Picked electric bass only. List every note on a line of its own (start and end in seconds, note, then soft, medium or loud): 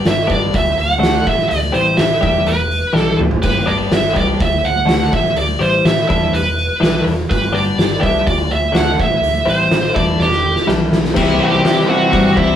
0.07 0.23 G1 medium
0.30 0.47 G1 medium
0.54 0.71 D2 medium
0.78 0.95 D2 medium
1.02 1.19 D2 medium
1.27 1.44 A1 medium
1.52 1.68 D2 medium
1.75 1.92 A1 medium
2.00 2.17 A1 medium
2.23 2.40 E1 medium
2.47 2.81 E1 medium
2.95 3.12 B1 medium
3.18 3.36 A1 medium
3.44 3.61 G1 medium
3.68 3.85 G1 medium
3.93 4.09 G1 medium
4.16 4.33 C2 medium
4.41 4.58 D2 medium
4.63 4.81 D2 medium
4.88 5.05 D2 medium
5.13 5.30 A1 medium
5.35 5.53 D2 medium
5.61 5.78 A1 medium
5.85 6.02 A1 medium
6.11 6.27 E1 medium
6.34 6.68 E1 medium
6.82 6.99 B1 medium
7.06 7.23 E1 medium
7.31 7.48 G1 medium
7.53 7.70 G1 medium
7.78 7.95 G1 medium
8.03 8.27 C2 medium
8.27 8.44 D2 medium
8.51 8.68 D2 medium
8.76 8.93 D2 medium
9.00 9.16 A1 medium
9.22 9.39 D2 medium
9.47 9.64 A1 medium
9.71 9.88 A1 medium
9.97 10.13 E1 medium
10.19 10.53 E1 medium
10.69 10.86 B1 medium
10.93 11.10 B1 medium
11.16 11.38 C2 medium
11.40 11.62 C2 medium
11.65 12.09 C3 medium
12.13 12.34 G2 medium
12.37 12.56 C2 medium